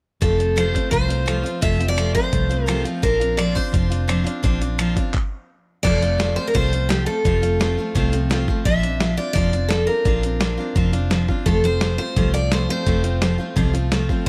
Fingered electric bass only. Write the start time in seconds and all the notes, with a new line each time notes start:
0.22 F1
0.92 C2
1.63 F1
2.33 C2
3.03 A#1
3.74 F1
4.44 A#1
5.85 F1
6.55 C2
7.25 F1
7.95 C2
8.65 A#1
9.36 F1
10.05 A#1
10.76 F1
11.46 F1
12.17 C2
12.86 F1
13.56 C2